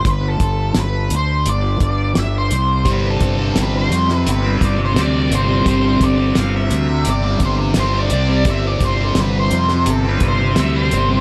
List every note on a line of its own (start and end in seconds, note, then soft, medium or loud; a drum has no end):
0.05 0.39 G1 medium
0.05 kick medium
0.05 closed hi-hat medium
0.10 0.28 B4 medium
0.28 0.80 A4 medium
0.40 0.74 G1 medium
0.40 kick medium
0.40 closed hi-hat medium
0.75 1.09 G1 medium
0.75 snare medium
0.75 closed hi-hat medium
0.80 1.14 B4 medium
1.10 1.44 D2 medium
1.10 closed hi-hat medium
1.16 1.49 C5 medium
1.46 1.79 G1 medium
1.46 2.13 D5 medium
1.46 closed hi-hat medium
1.80 2.14 G1 medium
1.80 kick medium
1.80 closed hi-hat medium
2.15 2.50 G1 medium
2.15 2.35 E5 medium
2.15 snare medium
2.15 closed hi-hat medium
2.38 2.90 C5 medium
2.51 2.85 C2 medium
2.51 closed hi-hat medium
2.85 3.19 G1 medium
2.85 3.54 C3 medium
2.85 3.41 G3 medium
2.85 3.39 C4 medium
2.85 kick medium
2.85 closed hi-hat medium
2.93 3.06 B4 medium
3.10 3.59 A4 medium
3.20 3.54 G1 medium
3.20 kick medium
3.20 closed hi-hat soft
3.39 3.57 G3 medium
3.39 3.58 C4 medium
3.56 3.89 G1 medium
3.56 4.43 C3 medium
3.56 4.09 G3 medium
3.56 4.09 C4 medium
3.56 snare medium
3.56 closed hi-hat medium
3.62 3.77 B4 medium
3.77 4.15 C5 medium
3.91 4.24 F2 medium
3.91 closed hi-hat medium
4.09 muted distorted electric guitar stroke soft
4.09 snare soft
4.15 4.29 B4 medium
4.27 4.60 G1 medium
4.27 4.64 B4 medium
4.27 closed hi-hat medium
4.43 4.62 G3 soft
4.43 4.62 C4 medium
4.60 4.95 G1 medium
4.60 4.93 C3 medium
4.60 4.78 G3 medium
4.60 4.78 C4 medium
4.60 kick medium
4.60 closed hi-hat medium
4.65 4.79 D5 medium
4.78 muted distorted electric guitar stroke soft
4.85 5.00 C5 medium
4.94 5.30 D2 medium
4.94 5.29 C3 medium
4.94 5.31 G3 medium
4.94 5.33 C4 loud
4.94 snare medium
4.94 closed hi-hat medium
5.00 5.34 D5 medium
5.30 5.64 G1 medium
5.30 5.64 C3 medium
5.30 5.49 G3 medium
5.30 5.46 C4 medium
5.30 closed hi-hat medium
5.35 5.68 C5 medium
5.46 5.66 G3 medium
5.46 5.68 C4 medium
5.65 6.00 G1 medium
5.65 6.33 C3 medium
5.65 6.20 G3 medium
5.65 6.17 C4 medium
5.65 6.03 C5 medium
5.65 kick medium
5.65 closed hi-hat medium
6.01 6.35 G1 medium
6.01 6.39 D5 medium
6.01 kick medium
6.01 snare soft
6.01 closed hi-hat soft
6.18 6.35 G3 soft
6.18 6.37 C4 medium
6.34 6.70 G1 medium
6.34 7.23 C3 medium
6.34 6.89 G3 medium
6.34 6.87 C4 medium
6.34 snare medium
6.34 closed hi-hat medium
6.39 6.55 F5 medium
6.56 7.09 E5 medium
6.71 7.05 D2 medium
6.71 closed hi-hat medium
6.88 muted distorted electric guitar stroke soft
7.05 7.40 G1 medium
7.05 closed hi-hat medium
7.10 7.41 D5 medium
7.23 7.41 G3 soft
7.23 7.43 C4 medium
7.40 7.74 G1 medium
7.40 7.74 C3 medium
7.40 7.59 G3 medium
7.40 7.59 C4 medium
7.40 kick medium
7.40 closed hi-hat medium
7.45 7.54 C5 medium
7.59 muted distorted electric guitar stroke soft
7.74 8.10 G1 medium
7.74 8.10 C3 medium
7.74 8.12 G3 medium
7.74 8.13 C4 medium
7.74 snare medium
7.74 closed hi-hat medium
7.79 7.99 C5 medium
7.99 8.50 D5 medium
8.10 8.45 C2 medium
8.10 8.44 C3 medium
8.10 8.31 G3 medium
8.10 8.29 C4 medium
8.10 closed hi-hat medium
8.29 8.46 G3 medium
8.29 8.47 C4 medium
8.45 8.80 G1 medium
8.45 9.15 C3 medium
8.45 9.00 G3 medium
8.45 8.98 C4 medium
8.45 kick loud
8.45 closed hi-hat medium
8.50 8.66 E5 medium
8.67 8.84 D5 medium
8.80 9.15 G1 medium
8.80 kick medium
8.80 closed hi-hat medium
8.85 9.19 C5 medium
8.98 9.17 G3 medium
8.98 9.19 C4 medium
9.15 9.50 G1 medium
9.15 10.04 C3 medium
9.15 9.70 G3 medium
9.15 snare medium
9.15 closed hi-hat medium
9.19 9.68 C4 medium
9.19 9.35 B4 medium
9.39 9.89 C5 medium
9.51 9.85 F2 medium
9.51 closed hi-hat soft
9.68 muted distorted electric guitar stroke soft
9.68 snare soft
9.86 10.20 G1 medium
9.86 10.09 A4 medium
9.86 closed hi-hat medium
10.05 10.23 G3 soft
10.05 10.23 C4 medium
10.09 10.25 B4 medium
10.20 10.55 G1 medium
10.20 10.55 C3 medium
10.20 10.40 G3 medium
10.20 10.38 C4 medium
10.20 kick medium
10.20 closed hi-hat soft
10.28 10.58 C5 medium
10.39 muted distorted electric guitar stroke soft
10.56 10.91 D2 medium
10.56 10.90 C3 medium
10.56 10.93 G3 medium
10.56 10.93 C4 medium
10.56 10.76 E5 medium
10.56 snare medium
10.56 closed hi-hat medium
10.76 11.21 C5 medium
10.91 11.21 G1 medium
10.91 11.21 C3 medium
10.91 11.11 G3 medium
10.91 11.08 C4 medium
10.91 closed hi-hat medium
11.09 11.21 G3 medium
11.09 11.21 C4 medium